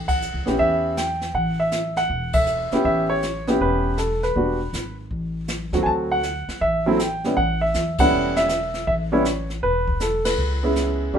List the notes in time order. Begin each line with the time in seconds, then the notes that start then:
Already playing: A1
0.08 F#5, kick, ride
0.22 hi-hat pedal
0.34 C#2
0.46 A#1 B3 C#4 E4 G4, snare
0.59 E2 E5, brush sweep, kick
0.97 G5, snare, hi-hat pedal
1.21 snare
1.34 A1 F#5, brush sweep, kick
1.60 E5
1.72 snare, hi-hat pedal
1.96 F#5, snare
2.09 E1, brush sweep, kick
2.33 E5, kick, ride
2.46 hi-hat pedal
2.71 B3 C#4 E4 G4, muted upright bass stroke, snare
2.84 A1 E5, brush sweep, kick
3.10 C#5
3.22 snare, hi-hat pedal
3.47 B3 C#4 E4 G4, snare
3.60 E1 B4, brush sweep, kick
3.98 A4, snare, hi-hat pedal
4.23 B4, snare
4.36 E1 G3 B3 D4 F#4, brush sweep, kick
4.73 G#1, snare, hi-hat pedal
5.10 A1, brush sweep, kick
5.48 snare, hi-hat pedal
5.72 D#2 F#3 A3 C4 F#4, snare
5.83 D2 G#5 A5, brush sweep, kick
6.12 F#5
6.23 snare, hi-hat pedal
6.48 muted upright bass stroke, snare
6.61 A1 E5, brush sweep, kick
6.86 F#3 A3 C4 E4
6.99 G5, snare, hi-hat pedal
7.24 G3 B3 C#4 E4, snare
7.37 A1 F#5, brush sweep, kick
7.61 E5
7.74 E2, snare, hi-hat pedal
7.98 G3 B3 C#4 E4 F#5, kick, ride
8.12 E1, brush sweep
8.36 E5, snare
8.49 snare, hi-hat pedal
8.74 snare
8.87 A1 E5, brush sweep, kick
9.12 G3 B3 C#4 E4 C#5
9.25 snare, hi-hat pedal
9.50 snare
9.63 E1 B4, brush sweep, kick
9.87 kick
10.00 A4, snare, hi-hat pedal
10.25 B4, snare, ride
10.37 C#2, brush sweep
10.63 G#3 B3 C#4 E4
10.76 snare, hi-hat pedal
11.13 F#2 G3 A#3 C#4 G4, brush sweep, kick